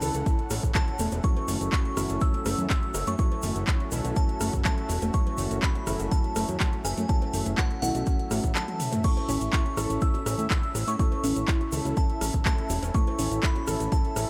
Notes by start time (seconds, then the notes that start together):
Already playing: C#4 E4 A4 F#5 A5
0.01 C#2 C#4 E4 A4, open hi-hat, high bongo, high conga, shaker
0.14 C#2, closed hi-hat, shaker
0.26 E4, kick, closed hi-hat, high bongo, shaker
0.39 closed hi-hat
0.50 A1 A3, cross-stick, open hi-hat, high bongo, shaker
0.63 A1, kick, closed hi-hat, high conga, shaker
0.74 A5, kick, clap, closed hi-hat, shaker
0.88 closed hi-hat, high bongo
0.99 E1 A3, open hi-hat, shaker
1.12 E1, closed hi-hat, cowbell, high bongo, shaker
1.24 F#3 A3 C#4 E4 F#4 A4 E5 C#6, kick, closed hi-hat, high bongo, shaker
1.37 closed hi-hat, cowbell
1.48 F#1 A3, open hi-hat, high bongo, high conga, shaker
1.61 F#1, closed hi-hat, shaker
1.72 C#4 C#6, kick, clap, closed hi-hat, shaker
1.85 closed hi-hat, high bongo
1.97 F#1 F#3 A3 C#4 E4 A4, cross-stick, open hi-hat, high conga, shaker
2.09 F#1, closed hi-hat, high bongo, shaker
2.21 C#4 E6, kick, closed hi-hat, shaker
2.34 closed hi-hat, high bongo
2.46 F#1 A3, cross-stick, open hi-hat, cowbell, shaker
2.58 F#2, closed hi-hat, high conga, shaker
2.70 F#3 E6, kick, clap, closed hi-hat, high bongo, shaker
2.83 closed hi-hat
2.94 F#1, cross-stick, open hi-hat, cowbell, high bongo, shaker
3.07 F#2 A3 C#6, closed hi-hat, shaker
3.18 F#3 A3 C#4 E4 A4 C#6, kick, closed hi-hat, high bongo, shaker
3.32 closed hi-hat, cowbell
3.42 F#1 A3, open hi-hat, high conga, shaker
3.55 F#1, closed hi-hat, high bongo, shaker
3.67 C#4, kick, clap, closed hi-hat, shaker
3.80 closed hi-hat, high bongo
3.92 B1 F#3 A3 C#4 E4 A4, open hi-hat, high conga, shaker
4.04 B1, closed hi-hat, high bongo, shaker
4.16 C#4 A5, kick, closed hi-hat, shaker
4.29 closed hi-hat
4.41 F#1 A3, cross-stick, open hi-hat, high bongo, shaker
4.53 F#1, kick, closed hi-hat, high conga, shaker
4.65 F#3 A5, kick, clap, closed hi-hat, high bongo, shaker
4.78 closed hi-hat
4.89 E1, open hi-hat, high bongo, shaker
5.02 E1 A3, closed hi-hat, cowbell, shaker
5.14 F#3 A3 C#4 E4 A4 C#6, kick, closed hi-hat, shaker
5.26 closed hi-hat, cowbell, high bongo
5.38 F#1 A3, open hi-hat, high conga, shaker
5.51 F#1, closed hi-hat, high bongo, shaker
5.62 C#4 B5, kick, clap, closed hi-hat, shaker
5.75 closed hi-hat, high bongo
5.87 F#1 F#3 A3 C#4 E4 A4, cross-stick, open hi-hat, high conga, shaker
6.00 F#1, closed hi-hat, shaker
6.11 C#4 A5, kick, closed hi-hat, high bongo, shaker
6.24 closed hi-hat
6.35 F#1 A3, cross-stick, open hi-hat, cowbell, high bongo, shaker
6.48 F#2, closed hi-hat, high conga, shaker
6.60 F#3, kick, clap, closed hi-hat, high bongo, shaker
6.73 closed hi-hat
6.85 F#1 G#5, cross-stick, open hi-hat, cowbell, shaker
6.97 F#2 A3, closed hi-hat, high bongo, shaker
7.09 F#3 A3 C#4 E4 A4 A5, kick, closed hi-hat, shaker
7.21 closed hi-hat, cowbell, high bongo
7.33 F#1 A3, open hi-hat, high conga, shaker
7.46 F#1, closed hi-hat, high bongo, shaker
7.58 C#4 F#5, kick, clap, closed hi-hat, shaker
7.71 closed hi-hat
7.82 B1 F#3 A3 C#4 E4 A4 F#5, open hi-hat, high bongo, high conga, shaker
7.95 B1, closed hi-hat, shaker
8.06 C#4, kick, closed hi-hat, high bongo, shaker
8.19 closed hi-hat
8.31 A1 A3, cross-stick, open hi-hat, high bongo, shaker
8.43 A1, kick, closed hi-hat, high conga, shaker
8.55 F#3 A5, clap, closed hi-hat, shaker
8.68 closed hi-hat, high tom, high bongo
8.80 open hi-hat, mid tom, shaker
8.92 A3, closed hi-hat, mid tom, cowbell, high bongo, shaker
9.04 A3 C#4 E4 A4 C#6, kick, closed hi-hat, crash, high bongo, shaker
9.17 closed hi-hat, cowbell
9.28 A1 C#4, open hi-hat, high bongo, high conga, shaker
9.41 A1, closed hi-hat, shaker
9.53 E4 C#6, kick, clap, closed hi-hat, shaker
9.66 closed hi-hat, high bongo
9.77 A1 C#4 E4 A4, cross-stick, open hi-hat, high conga, shaker
9.90 A1, closed hi-hat, high bongo, shaker
10.01 E4 E6, kick, closed hi-hat, shaker
10.14 closed hi-hat, high bongo
10.26 A1 C#4, cross-stick, open hi-hat, cowbell, shaker
10.38 A2, closed hi-hat, high conga, shaker
10.50 A3 E6, kick, clap, closed hi-hat, high bongo, shaker
10.63 closed hi-hat
10.75 A1, cross-stick, open hi-hat, cowbell, high bongo, shaker
10.88 A2 C#4 C#6, closed hi-hat, shaker
10.99 A3 C#4 E4 A4 C#6, kick, closed hi-hat, high bongo, shaker
11.12 closed hi-hat, cowbell
11.24 A1 C#4, open hi-hat, high conga, shaker
11.36 A1, closed hi-hat, high bongo, shaker
11.48 E4, kick, clap, closed hi-hat, shaker
11.61 closed hi-hat, high bongo
11.72 C#2 C#4 E4 A4, open hi-hat, high conga, shaker
11.85 C#2, closed hi-hat, high bongo, shaker
11.97 E4 A5, kick, closed hi-hat, shaker
12.10 closed hi-hat
12.21 A1 C#4, cross-stick, open hi-hat, high bongo, shaker
12.33 A1, kick, closed hi-hat, high conga, shaker
12.45 A3 A5, kick, clap, closed hi-hat, high bongo, shaker
12.58 closed hi-hat
12.70 E1, open hi-hat, high bongo, shaker
12.82 E1 C#4, closed hi-hat, cowbell, shaker
12.94 A3 C#4 E4 A4 C#6, kick, closed hi-hat, shaker
13.07 closed hi-hat, cowbell, high bongo
13.19 A1 C#4, open hi-hat, high conga, shaker
13.31 A1, closed hi-hat, high bongo, shaker
13.43 E4 B5, kick, clap, closed hi-hat, shaker
13.56 closed hi-hat, high bongo
13.67 A1 C#4 E4 A4, cross-stick, open hi-hat, high conga, shaker
13.80 A1, closed hi-hat, shaker
13.92 E4 A5, kick, closed hi-hat, high bongo, shaker
14.05 closed hi-hat
14.16 A1 C#4, cross-stick, open hi-hat, cowbell, high bongo, shaker